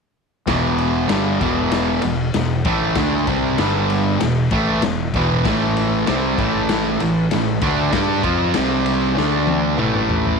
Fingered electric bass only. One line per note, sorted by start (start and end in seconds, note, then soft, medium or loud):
0.47 1.06 E1 medium
1.09 1.39 G1 loud
1.41 1.99 E1 medium
2.04 2.33 E1 medium
2.34 2.63 E1 medium
2.65 2.94 A1 loud
2.96 3.25 D2 loud
3.28 3.57 C2 medium
3.59 4.17 G1 medium
4.22 4.50 E1 medium
4.52 4.81 A1 medium
4.84 5.13 E1 medium
5.14 5.43 E1 loud
5.45 6.03 A1 loud
6.09 6.37 C2 medium
6.39 6.96 A1 loud
7.02 7.30 A1 medium
7.34 7.61 A1 medium
7.61 7.91 D2 medium
7.93 8.22 G2 medium
8.24 8.53 F2 medium
8.57 9.14 C2 medium
9.18 9.75 D2 loud
9.81 10.38 A1 medium